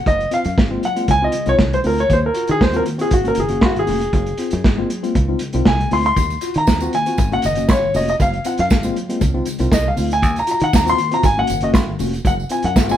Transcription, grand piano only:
0.07 D#5
0.34 F5
0.85 F#5
1.11 G#5
1.24 D#5
1.49 C#5
1.74 C5
1.87 A#4
2.00 C#5
2.13 C5
2.26 A#4
2.51 G#4
2.62 C5
2.76 A#4
3.01 G#4
3.13 F#4
3.28 A#4
3.40 G#4
3.66 F#4
3.79 G#4
5.67 G#5
5.93 C6
6.06 C6
6.58 A#5
6.95 G#5
7.33 F#5
7.46 D#5
7.71 C#5
7.96 D#5
8.10 D#5
8.22 F5
8.46 F#5
8.60 F5
9.74 D#5
9.88 F5
10.13 G#5
10.39 A#5
10.51 A#5
10.64 F#5
10.76 A#5
10.90 C6
11.14 A#5
11.25 G#5
11.39 F#5
11.64 D#5
12.27 F#5
12.52 G#5
12.65 F#5
12.91 G#5

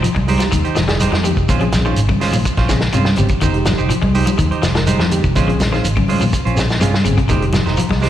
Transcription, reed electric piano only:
0.27 G#3 D#4 G4
0.87 G#3 D#4 G#4
1.24 G#3 D#4 G4
1.60 C4 C#4 G#4
2.69 C4 C#4 G#4
2.93 C4 C#4 G#4
3.16 C4 C#4 G4
3.53 G#3 D#4 G4
4.13 G#3 D#4 G4
4.74 G#3 D#4 A#4
5.10 G#3 D#4 G4
5.47 C4 C#4 G#4
6.55 C4 C#4 G#4
6.80 C4 C#4 G#4
7.04 C4 C#4 G#4
7.40 G#3 D#4 G4
8.01 G#3 D#4 G4

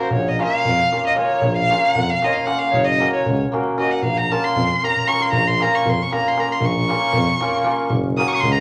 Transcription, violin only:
0.00 C5
0.13 C#5
0.28 D#5
0.43 F5
1.07 D#5
1.19 C#5
1.57 F5
1.85 F#5
2.10 F5
2.24 C#5 D#5
2.29 D#5
2.33 F5
2.46 F#5
2.59 F5
2.71 C#5
2.85 D#5
3.13 C#5
3.79 D#5
3.91 F#5
4.04 F5
4.18 A#5
4.32 A5
4.44 C6
4.85 A#5
5.08 C#6
5.23 C6
5.33 A#5
5.48 C6
5.62 A#5
5.75 C#6
5.89 C6
6.02 C#6
6.15 A#5
6.28 C6
6.40 A#5
6.52 C6
6.66 C#6
8.17 D#6
8.28 C#6
8.33 C#6 D#6
8.40 C6
8.52 A#5

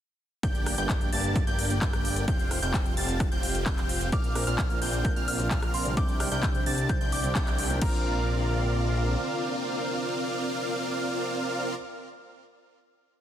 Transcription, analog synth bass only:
0.43 G1
0.78 G1
1.13 G1
1.47 G1
1.82 G1
2.28 F1
2.63 F1
2.97 F1
3.32 F1
3.66 F1
4.13 A#1
4.47 A#1
4.82 A#1
5.16 A#1
5.51 A#1
5.97 C2
6.32 C2
6.66 C2
7.01 C2
7.36 C2
7.82 A#1

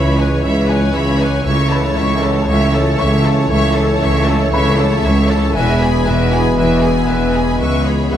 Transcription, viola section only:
Already playing: C#5
0.17 B4
0.43 C#5
0.68 B4
0.93 C#5
1.20 B4
1.45 C#5
1.71 A4
1.96 C#5
2.22 A4
2.48 C#5
2.73 A4
2.99 C#5
3.24 A4
3.50 C#5
3.75 A4
4.01 C#5
4.27 A4
4.53 C#5
4.79 A4
5.04 C#5
5.30 A4
5.55 B4
5.80 G#4
6.07 B4
6.33 G#4
6.58 B4
6.83 G#4
7.09 B4
7.35 G#4
7.60 B4
7.87 G#4
8.12 B4

